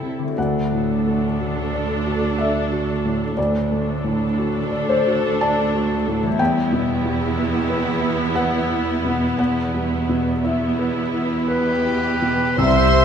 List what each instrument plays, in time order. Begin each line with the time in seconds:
Already playing: felt piano C2 E4 C5 E5 G5, cello section C3, harp C3 A3 E4 E5, viola section E4 A4
0.03 felt piano C3
0.19 harp D3
0.23 harp A3
0.28 harp F#4
0.32 harp D5
0.37 cello section D2, felt piano D2 F#5, viola section D4 A4
0.72 felt piano A2
1.07 felt piano A3
1.40 felt piano F#4
1.74 felt piano D5
2.07 felt piano F#4
2.38 felt piano D5 E5
2.72 felt piano F#4
3.05 felt piano A2
3.37 cello section D2, felt piano D2 D5, viola section D4 A4
3.72 felt piano A3
4.04 felt piano A2
4.38 felt piano F#4
4.72 felt piano D5
4.89 felt piano C5
5.07 felt piano F#4
5.41 felt piano D5 A5
5.75 felt piano F#4
6.08 felt piano A2
6.23 harp E3
6.27 harp G3
6.31 harp E4
6.39 cello section E2, felt piano E2 G5, viola section B3 E4
6.72 felt piano B2
7.05 felt piano G3
7.37 felt piano E4
7.70 felt piano B4
8.02 felt piano E4
8.35 felt piano B4 F#5
8.70 felt piano E4
9.04 felt piano B2
9.39 felt piano E2 F#5, cello section E2
9.74 felt piano G3
10.09 felt piano B2
10.44 viola section B3 E4, felt piano E4 E5
10.79 felt piano B4
11.13 felt piano E4
11.48 violin section G4, felt piano B4, flute B4, oboe B4, clarinet B4
11.84 felt piano E4
12.22 felt piano B2
12.58 felt piano C2 C3, double bass section C2, cello section C3, timpani C3, harp C3, viola section G3 C5, french horn section C4 G4, violin section C5 C6, clarinet E5, flute E5, oboe E5